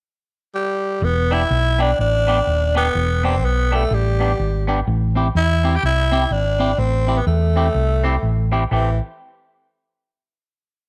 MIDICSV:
0, 0, Header, 1, 4, 480
1, 0, Start_track
1, 0, Key_signature, 0, "minor"
1, 0, Tempo, 481155
1, 1018, Time_signature, 4, 2, 24, 8
1, 10855, End_track
2, 0, Start_track
2, 0, Title_t, "Clean electric guitar"
2, 0, Program_c, 0, 27
2, 1304, Note_on_c, 0, 59, 73
2, 1309, Note_on_c, 0, 62, 84
2, 1316, Note_on_c, 0, 67, 82
2, 1412, Note_off_c, 0, 59, 0
2, 1415, Note_off_c, 0, 62, 0
2, 1418, Note_off_c, 0, 67, 0
2, 1781, Note_on_c, 0, 59, 79
2, 1789, Note_on_c, 0, 62, 89
2, 1796, Note_on_c, 0, 67, 103
2, 1891, Note_off_c, 0, 59, 0
2, 1896, Note_off_c, 0, 62, 0
2, 1899, Note_off_c, 0, 67, 0
2, 2266, Note_on_c, 0, 59, 95
2, 2273, Note_on_c, 0, 62, 85
2, 2280, Note_on_c, 0, 67, 97
2, 2375, Note_off_c, 0, 59, 0
2, 2378, Note_off_c, 0, 62, 0
2, 2381, Note_off_c, 0, 67, 0
2, 2745, Note_on_c, 0, 59, 87
2, 2753, Note_on_c, 0, 62, 84
2, 2757, Note_on_c, 0, 67, 105
2, 2855, Note_off_c, 0, 59, 0
2, 2859, Note_off_c, 0, 62, 0
2, 2861, Note_off_c, 0, 67, 0
2, 3226, Note_on_c, 0, 59, 85
2, 3236, Note_on_c, 0, 62, 81
2, 3242, Note_on_c, 0, 67, 90
2, 3335, Note_off_c, 0, 59, 0
2, 3340, Note_off_c, 0, 62, 0
2, 3343, Note_off_c, 0, 67, 0
2, 3704, Note_on_c, 0, 59, 76
2, 3711, Note_on_c, 0, 62, 77
2, 3719, Note_on_c, 0, 67, 90
2, 3815, Note_off_c, 0, 59, 0
2, 3818, Note_off_c, 0, 62, 0
2, 3822, Note_off_c, 0, 67, 0
2, 4188, Note_on_c, 0, 59, 87
2, 4196, Note_on_c, 0, 62, 93
2, 4203, Note_on_c, 0, 67, 87
2, 4296, Note_off_c, 0, 59, 0
2, 4300, Note_off_c, 0, 62, 0
2, 4303, Note_off_c, 0, 67, 0
2, 4663, Note_on_c, 0, 59, 86
2, 4672, Note_on_c, 0, 62, 94
2, 4676, Note_on_c, 0, 67, 103
2, 4773, Note_off_c, 0, 59, 0
2, 4778, Note_off_c, 0, 62, 0
2, 4780, Note_off_c, 0, 67, 0
2, 5142, Note_on_c, 0, 60, 78
2, 5150, Note_on_c, 0, 64, 75
2, 5157, Note_on_c, 0, 67, 82
2, 5252, Note_off_c, 0, 60, 0
2, 5257, Note_off_c, 0, 64, 0
2, 5260, Note_off_c, 0, 67, 0
2, 5625, Note_on_c, 0, 60, 83
2, 5630, Note_on_c, 0, 64, 85
2, 5635, Note_on_c, 0, 67, 88
2, 5733, Note_off_c, 0, 60, 0
2, 5736, Note_off_c, 0, 64, 0
2, 5739, Note_off_c, 0, 67, 0
2, 6100, Note_on_c, 0, 60, 95
2, 6108, Note_on_c, 0, 64, 87
2, 6113, Note_on_c, 0, 67, 112
2, 6210, Note_off_c, 0, 60, 0
2, 6215, Note_off_c, 0, 64, 0
2, 6217, Note_off_c, 0, 67, 0
2, 6574, Note_on_c, 0, 60, 82
2, 6582, Note_on_c, 0, 64, 77
2, 6588, Note_on_c, 0, 67, 92
2, 6687, Note_off_c, 0, 60, 0
2, 6691, Note_off_c, 0, 64, 0
2, 6694, Note_off_c, 0, 67, 0
2, 7056, Note_on_c, 0, 60, 72
2, 7063, Note_on_c, 0, 64, 81
2, 7070, Note_on_c, 0, 67, 80
2, 7167, Note_off_c, 0, 60, 0
2, 7171, Note_off_c, 0, 64, 0
2, 7174, Note_off_c, 0, 67, 0
2, 7542, Note_on_c, 0, 60, 88
2, 7549, Note_on_c, 0, 64, 84
2, 7553, Note_on_c, 0, 67, 83
2, 7649, Note_off_c, 0, 60, 0
2, 7653, Note_off_c, 0, 64, 0
2, 7655, Note_off_c, 0, 67, 0
2, 8016, Note_on_c, 0, 60, 104
2, 8023, Note_on_c, 0, 64, 96
2, 8028, Note_on_c, 0, 67, 101
2, 8126, Note_off_c, 0, 60, 0
2, 8129, Note_off_c, 0, 64, 0
2, 8132, Note_off_c, 0, 67, 0
2, 8496, Note_on_c, 0, 60, 84
2, 8502, Note_on_c, 0, 64, 94
2, 8506, Note_on_c, 0, 67, 102
2, 8605, Note_off_c, 0, 60, 0
2, 8608, Note_off_c, 0, 64, 0
2, 8610, Note_off_c, 0, 67, 0
2, 8692, Note_on_c, 0, 57, 74
2, 8699, Note_on_c, 0, 60, 81
2, 8707, Note_on_c, 0, 67, 92
2, 8867, Note_off_c, 0, 57, 0
2, 8870, Note_off_c, 0, 60, 0
2, 8874, Note_off_c, 0, 67, 0
2, 10855, End_track
3, 0, Start_track
3, 0, Title_t, "Tenor saxophone"
3, 0, Program_c, 1, 66
3, 545, Note_on_c, 1, 55, 91
3, 1034, Note_on_c, 1, 59, 100
3, 1049, Note_off_c, 1, 55, 0
3, 1325, Note_on_c, 1, 64, 96
3, 1340, Note_off_c, 1, 59, 0
3, 1809, Note_on_c, 1, 62, 88
3, 1824, Note_off_c, 1, 64, 0
3, 1990, Note_off_c, 1, 62, 0
3, 2000, Note_on_c, 1, 62, 106
3, 2723, Note_off_c, 1, 62, 0
3, 2766, Note_on_c, 1, 59, 102
3, 3240, Note_on_c, 1, 60, 88
3, 3254, Note_off_c, 1, 59, 0
3, 3441, Note_on_c, 1, 59, 96
3, 3456, Note_off_c, 1, 60, 0
3, 3738, Note_on_c, 1, 57, 88
3, 3752, Note_off_c, 1, 59, 0
3, 3927, Note_on_c, 1, 55, 84
3, 3942, Note_off_c, 1, 57, 0
3, 4685, Note_off_c, 1, 55, 0
3, 5355, Note_on_c, 1, 64, 105
3, 5742, Note_on_c, 1, 67, 96
3, 5757, Note_off_c, 1, 64, 0
3, 5829, Note_off_c, 1, 67, 0
3, 5839, Note_on_c, 1, 64, 105
3, 6303, Note_on_c, 1, 62, 98
3, 6318, Note_off_c, 1, 64, 0
3, 6774, Note_on_c, 1, 60, 90
3, 6789, Note_off_c, 1, 62, 0
3, 7158, Note_on_c, 1, 59, 78
3, 7173, Note_off_c, 1, 60, 0
3, 7246, Note_off_c, 1, 59, 0
3, 7252, Note_on_c, 1, 57, 83
3, 8462, Note_off_c, 1, 57, 0
3, 8703, Note_on_c, 1, 52, 89
3, 8968, Note_off_c, 1, 52, 0
3, 10855, End_track
4, 0, Start_track
4, 0, Title_t, "Fingered electric bass"
4, 0, Program_c, 2, 33
4, 1013, Note_on_c, 2, 28, 106
4, 1424, Note_off_c, 2, 28, 0
4, 1501, Note_on_c, 2, 35, 92
4, 1909, Note_off_c, 2, 35, 0
4, 1983, Note_on_c, 2, 33, 83
4, 2391, Note_off_c, 2, 33, 0
4, 2460, Note_on_c, 2, 27, 72
4, 2870, Note_off_c, 2, 27, 0
4, 2940, Note_on_c, 2, 28, 101
4, 3418, Note_off_c, 2, 28, 0
4, 3418, Note_on_c, 2, 35, 93
4, 3828, Note_off_c, 2, 35, 0
4, 3898, Note_on_c, 2, 33, 97
4, 4308, Note_off_c, 2, 33, 0
4, 4381, Note_on_c, 2, 32, 87
4, 4789, Note_off_c, 2, 32, 0
4, 4861, Note_on_c, 2, 33, 115
4, 5269, Note_off_c, 2, 33, 0
4, 5337, Note_on_c, 2, 40, 90
4, 5746, Note_off_c, 2, 40, 0
4, 5816, Note_on_c, 2, 36, 88
4, 6225, Note_off_c, 2, 36, 0
4, 6290, Note_on_c, 2, 32, 80
4, 6701, Note_off_c, 2, 32, 0
4, 6764, Note_on_c, 2, 33, 106
4, 7177, Note_off_c, 2, 33, 0
4, 7248, Note_on_c, 2, 40, 94
4, 7659, Note_off_c, 2, 40, 0
4, 7726, Note_on_c, 2, 36, 92
4, 8137, Note_off_c, 2, 36, 0
4, 8206, Note_on_c, 2, 33, 76
4, 8616, Note_off_c, 2, 33, 0
4, 8692, Note_on_c, 2, 33, 91
4, 8962, Note_off_c, 2, 33, 0
4, 10855, End_track
0, 0, End_of_file